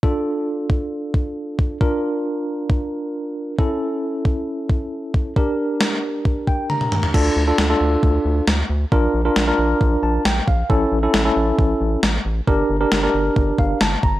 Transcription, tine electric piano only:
\new Staff \with { instrumentName = "Tine electric piano" } { \time 4/4 \key d \minor \tempo 4 = 135 << { r1 | r1 | r1 | r2 r8 g''8 bes''4 |
r1 | r2 r8 a''8 g''8 f''8 | r1 | r2 r8 f''8 a''8 bes''8 | } \\ { <d' f' a'>1 | <d' f' bes'>1 | <cis' e' a'>1 | <d' g' bes'>1 |
<d' f' a'>8. <d' f' a'>8 <d' f' a'>4.~ <d' f' a'>16 r4 | <d' f' bes'>8. <d' f' bes'>8 <d' f' bes'>4.~ <d' f' bes'>16 r4 | <cis' e' a'>8. <cis' e' a'>8 <cis' e' a'>4.~ <cis' e' a'>16 r4 | <d' g' bes'>8. <d' g' bes'>8 <d' g' bes'>4.~ <d' g' bes'>16 r4 | } >> }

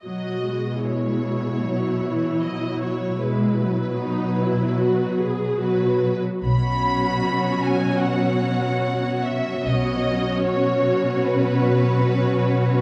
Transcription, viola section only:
\new Staff \with { instrumentName = "Viola section" } { \clef bass \time 4/4 \key b \major \tempo 4 = 75 << { fis'4 e'2.~ | e'4 dis'8 e'8 fis'8 gis'8 fis'8. r16 | cis'1 | cis'1 | } \\ { fis8 gis4. fis8 e8 fis4 | gis8 fis2~ fis8 fis8. r16 | fis1 | fis1 | } >> }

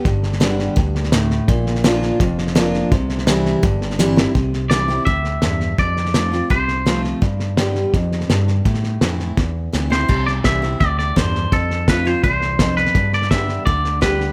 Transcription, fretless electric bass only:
\new Staff \with { instrumentName = "Fretless electric bass" } { \clef bass \time 4/4 \key c \major \tempo 4 = 168 g,,2 d,2 | bes,,2 f,,2 | c,2 g,,2 | c,2 d,4 e,4 |
f,2 c,2 | g,2 f,4 g,4 | a,4 f,4 e,4 d,4 | c,4 c,4 d,4 e,4 |
f,2 c,2 | g,2 d,2 | }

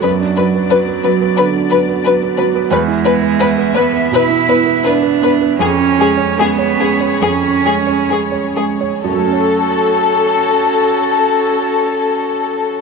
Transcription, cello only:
\new Staff \with { instrumentName = "Cello" } { \time 4/4 \key fis \minor \tempo 4 = 79 fis2.~ fis8 r8 | gis4. b8 e'4 d'4 | cis'4 b4 cis'4. r8 | fis'1 | }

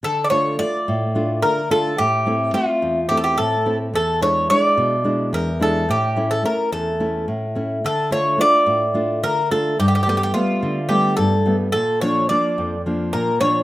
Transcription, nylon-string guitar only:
\new Staff \with { instrumentName = "Nylon-string guitar" } { \time 7/8 \key d \minor \tempo 4 = 108 d8 <a d' f'>8 <a d' f'>8 a,8 <a d' f'>8 d8 <a d' f'>8 | a,8 <a c' e'>8 <a c' e''>8 e,8 <a c' e'>8 a,8 <a c' e'>8 | e,8 <gis d' e'>8 <gis d' e'>8 b,8 <gis d' e'>8 e,8 <gis d' e'>8 | a,8 <a cis' e'>8 <a cis' e'>8 e,8 <a cis' e'>8 a,8 <a cis' e'>8 |
d8 <a d' f'>8 <a d' f'>8 a,8 <a d' f'>8 d8 <a d' f'>8 | g,8 <g a b>8 <g a b>8 d8 <g a b>8 g,8 <g a b>8 | bes,8 <f bes d'>8 <f bes d'>8 f,8 <f bes d'>8 bes,8 <f bes d'>8 | }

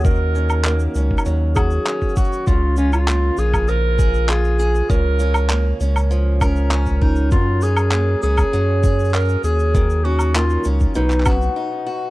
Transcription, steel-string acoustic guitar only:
\new Staff \with { instrumentName = "Steel-string acoustic guitar" } { \time 4/4 \key ees \minor \tempo 4 = 99 ees8 des'8 bes8 des'8 ges8 ges'8 des'8 ges'8 | des8 f'8 bes8 f'8 f8 aes'8 f'8 aes'8 | des8 des'8 bes8 des'8 f8 bes'8 des'8 bes'8 | ges,8 des'8 bes8 des'8 ges8 aes'8 des'8 aes'8 |
ees8 des'8 bes8 des'8 ces8 ges'8 ees'8 ges'8 | }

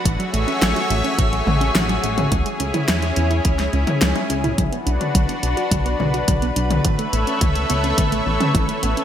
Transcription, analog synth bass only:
\new Staff \with { instrumentName = "Analog synth bass" } { \clef bass \time 4/4 \key b \dorian \tempo 4 = 106 a,,8 a,,8 a,,8 a,,8 a,,8 a,,8 a,,8 a,,8 | cis,8 cis,8 e,8 e,8 cis,8 cis,8 cis,8 cis,8 | b,,8 b,,8 b,,8 b,,8 b,,8 b,,8 b,,8 b,,8 | a,,8 a,,8 cis,8 cis,8 a,,8 a,,8 a,,8 a,,8 | }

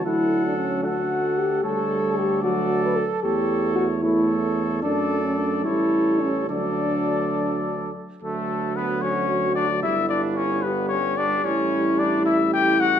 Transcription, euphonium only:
\new Staff \with { instrumentName = "Euphonium" } { \clef bass \time 6/8 \key d \major \tempo 4. = 74 fis4. a4. | g4. fis4. | a4. a4. | a4. g4. |
fis2~ fis8 r8 | fis2. | g2.~ | g2. | }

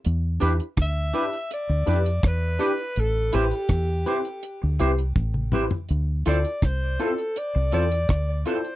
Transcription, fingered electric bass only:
\new Staff \with { instrumentName = "Fingered electric bass" } { \clef bass \time 4/4 \key a \minor \tempo 4 = 82 e,8 e,16 r16 d,8 r8. d,16 f,8 e,8 r8 | a,,8 a,,16 r16 e,8 r8. d,16 c,8 a,,8. r16 | d,8 d,16 r16 c,8 r8. c,16 e,8 d,8 r8 | }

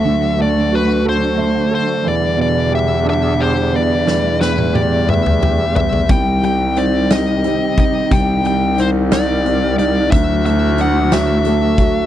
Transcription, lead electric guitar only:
\new Staff \with { instrumentName = "Lead electric guitar" } { \time 6/8 \key e \minor \tempo 4. = 60 e''8 d''8 b'8 c''4 c''8 | d''8 d''8 e''8 e''8 c''8 d''8~ | d''8 b'8 d''8 e''4 e''8 | g''8 g''8 d''8 ees''4 ees''8 |
g''8 g''8 c''8 d''4 d''8 | e''8 e''8 fis''8 e''4. | }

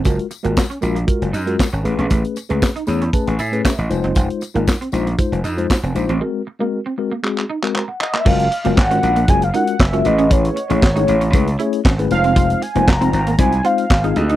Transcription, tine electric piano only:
\new Staff \with { instrumentName = "Tine electric piano" } { \time 4/4 \key ges \lydian \tempo 4 = 117 << { r1 | r4. b''8 a''16 gis''8. e''16 ees''8. | r1 | r2. bes''16 ges''8 ees''16~ |
ees''16 r2. r8. | r1 | r1 | } \\ { <aes f' ges' bes'>8 r16 <aes f' ges' bes'>8 r16 <aes f' ges' bes'>16 r16 <aes f' ges' bes'>8 r16 <aes f' ges' bes'>8 r16 <a cis' gis' b'>8~ | <a cis' gis' b'>8 r16 <a cis' gis' b'>8 r16 <a cis' gis' cis''>16 r16 <a cis' gis' b'>8 r16 <a cis' gis' b'>8 r16 <aes ees' f' c''>8~ | <aes ees' f' c''>8 r16 <aes ees' f' bes'>8 r16 <aes ees' f' c''>16 r16 <aes ees' f' c''>8 r16 <aes ees' f' c''>8 r16 <aes ees' f' c''>16 r16 | <aes c' ges' bes'>8 r16 <aes c' ges' bes'>8 r16 <aes c' ges' bes'>16 r16 <aes c' ges' aes'>8 r16 <aes c' ges' bes'>8 r8. |
<aes des' f' ges' bes'>8 r16 <aes des' f' ges' bes'>16 r16 <aes des' f' ges' bes'>8 r16 <aes des' f' ges' aes'>16 r16 <aes des' f' ges' bes'>8 r16 <aes des' f' ges' bes'>16 <a cis' e' gis' b'>8~ | <a cis' e' gis' b'>8 r16 <a cis' e' gis' cis''>16 r16 <a cis' e' gis' cis''>8 r16 <a cis' e' gis' b'>16 r16 <a cis' e' gis' cis''>8 r16 <a cis' e' gis' b'>16 <aes c' ees' f' c''>8~ | <aes c' ees' f' c''>8 r16 <aes c' ees' f' c''>16 r16 <aes c' ees' f' c''>8 r16 <aes c' ees' f' c''>16 r16 <aes c' ees' f' c''>8 r16 <aes c' ees' f' aes'>8 r16 | } >> }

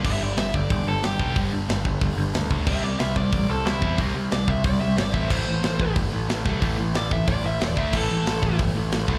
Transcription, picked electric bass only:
\new Staff \with { instrumentName = "Picked electric bass" } { \clef bass \time 4/4 \key g \mixolydian \tempo 4 = 183 g,,8 g,,8 g,,8 g,,8 f,,8 g,,8 g,,8 b,,8 | g,,8 g,,8 g,,8 g,,8 g,,8 g,,8 d,8 d,8 | c,8 c,8 c,8 c,8 a,,8 c,8 c,8 e,8 | c,8 c,8 c,8 c,8 c,8 c,8 g,,8 a,,8 |
a,,8 a,,8 a,,8 a,,8 g,,8 a,,8 a,,8 c,8 | a,,8 a,,8 a,,8 a,,8 a,,8 a,,8 e,,8 d,8 | a,,8 a,,8 a,,8 a,,8 g,,8 a,,8 a,,8 c,8 | }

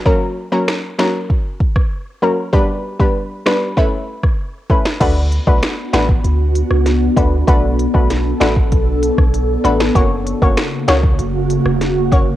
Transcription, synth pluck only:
\new Staff \with { instrumentName = "Synth pluck" } { \time 4/4 \key d \major \tempo 4 = 97 <fis ais cis' ais'>8. <fis ais cis' ais'>8. <fis ais cis' ais'>8 r4. <fis ais cis' ais'>16 r16 | <g b d' b'>8. <g b d' b'>8. <g b d' b'>8 <a cis' e' b'>4. <a cis' e' b'>16 r16 | <a d' fis' b'>8. <a d' fis' b'>8. <a d' fis' b'>8 r4. <a d' fis' b'>16 r16 | <a d' fis' b'>8. <a d' fis' b'>8. <a d' fis' b'>8 r4. <a d' fis' b'>16 r16 |
<ais cis' fis' cis''>8. <ais cis' fis' cis''>8. <ais cis' fis' cis''>8 r4. <ais cis' fis' cis''>16 r16 | }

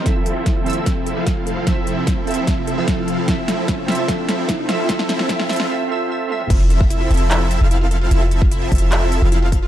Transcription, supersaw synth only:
\new Staff \with { instrumentName = "Supersaw synth" } { \time 4/4 \key f \major \tempo 4 = 149 <f c' e' a' e''>4. <f c' e' a' e''>4~ <f c' e' a' e''>16 <f c' e' a' f''>4~ <f c' e' a' f''>16 | <f c' e' a' e''>4. <f c' e' a' e''>4~ <f c' e' a' e''>16 <f c' e' a' f''>4~ <f c' e' a' f''>16 | <f c' e' a' e''>4. <f c' e' a' e''>8 <f c' e' a' e''>4. <f c' e' a' e''>8 | <f c' e' a' e''>4 <f c' e' a' e''>4 r2 |
<f c' e' a' e''>4. <f c' e' a' e''>4~ <f c' e' a' e''>16 <f c' e' a' f''>4~ <f c' e' a' f''>16 | <f c' e' a' e''>4. <f c' e' a' e''>4~ <f c' e' a' e''>16 <f c' e' a' f''>4~ <f c' e' a' f''>16 | }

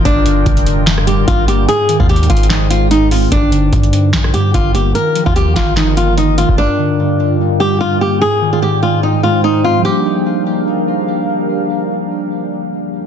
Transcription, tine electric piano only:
\new Staff \with { instrumentName = "Tine electric piano" } { \clef bass \time 4/4 \key g \phrygian \tempo 4 = 147 g,8 d8 g,4 g,8 g8 g,8 bes8 | aes,8 ees8 aes,4 aes,8 aes8 aes,8 c'8 | r8 d8 g,4 g,8 g8 g,8 bes8 | ees8 f8 ees4 ees8 bes8 ees8 ees'8 |
g,8 d8 g,4 g,8 g8 g,8 bes8 | aes,8 ees8 aes,4 aes,8 aes8 aes,8 c'8 | <f g bes d'>1~ | <f g bes d'>1 | }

